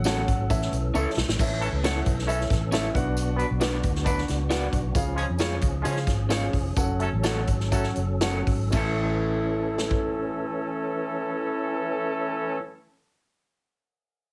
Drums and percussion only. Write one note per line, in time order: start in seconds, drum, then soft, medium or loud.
0.04 snare loud
0.04 closed hi-hat medium
0.04 tambourine medium
0.28 kick medium
0.28 closed hi-hat medium
0.50 kick medium
0.50 closed hi-hat medium
0.50 tambourine medium
0.62 snare soft
0.73 closed hi-hat medium
0.95 tambourine medium
1.18 snare medium
1.29 snare medium
1.39 kick loud
1.39 crash loud
1.39 tambourine medium
1.62 closed hi-hat medium
1.84 snare loud
1.84 closed hi-hat medium
1.84 tambourine medium
2.06 kick medium
2.06 closed hi-hat medium
2.19 snare soft
2.29 closed hi-hat loud
2.29 tambourine medium
2.41 snare soft
2.50 kick loud
2.50 snare soft
2.50 closed hi-hat medium
2.72 snare medium
2.72 closed hi-hat medium
2.72 tambourine medium
2.95 kick loud
2.95 closed hi-hat medium
3.17 closed hi-hat medium
3.17 tambourine medium
3.39 closed hi-hat medium
3.61 snare loud
3.61 closed hi-hat medium
3.61 tambourine medium
3.83 kick medium
3.83 closed hi-hat medium
3.95 snare soft
4.06 kick loud
4.06 closed hi-hat medium
4.06 tambourine medium
4.18 snare soft
4.28 snare soft
4.28 closed hi-hat medium
4.50 snare loud
4.50 closed hi-hat medium
4.50 tambourine medium
4.73 kick medium
4.73 closed hi-hat medium
4.95 kick loud
4.95 closed hi-hat medium
4.95 tambourine medium
5.17 closed hi-hat medium
5.38 snare loud
5.38 closed hi-hat medium
5.38 tambourine medium
5.61 kick medium
5.61 closed hi-hat medium
5.85 closed hi-hat medium
5.85 tambourine medium
5.96 snare soft
6.07 kick loud
6.07 snare soft
6.07 closed hi-hat medium
6.30 snare loud
6.30 closed hi-hat medium
6.30 tambourine medium
6.53 kick medium
6.53 open hi-hat medium
6.77 kick loud
6.77 closed hi-hat medium
6.77 tambourine medium
7.00 closed hi-hat medium
7.23 snare medium
7.23 closed hi-hat medium
7.23 tambourine medium
7.47 kick medium
7.47 closed hi-hat medium
7.60 snare soft
7.72 kick medium
7.72 closed hi-hat medium
7.72 tambourine medium
7.83 snare soft
7.95 closed hi-hat medium
8.21 snare medium
8.21 closed hi-hat medium
8.21 tambourine medium
8.47 kick medium
8.47 open hi-hat soft
8.72 kick loud
8.72 crash medium
8.72 tambourine medium
9.78 snare medium
9.91 kick medium